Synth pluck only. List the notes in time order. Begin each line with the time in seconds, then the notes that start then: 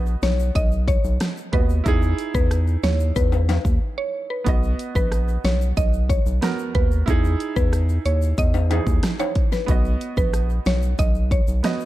0.23 C#5
0.56 D#5
0.88 C#5
1.53 B4
2.35 B4
2.83 C#5
3.16 B4
3.98 C#5
4.30 B4
4.96 B4
5.45 C#5
5.77 D#5
6.10 C#5
6.75 B4
7.56 B4
8.06 C#5
8.39 D#5
9.20 C#5
9.52 B4
10.18 B4
10.67 C#5
10.99 D#5
11.32 C#5